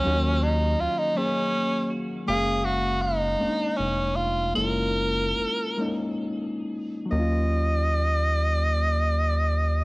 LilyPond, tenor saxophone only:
\new Staff \with { instrumentName = "Tenor saxophone" } { \time 6/8 \key ees \minor \tempo 4. = 51 des'8 ees'8 f'16 ees'16 des'4 r8 | aes'8 ges'8 ees'4 des'8 f'8 | bes'2 r4 | ees''2. | }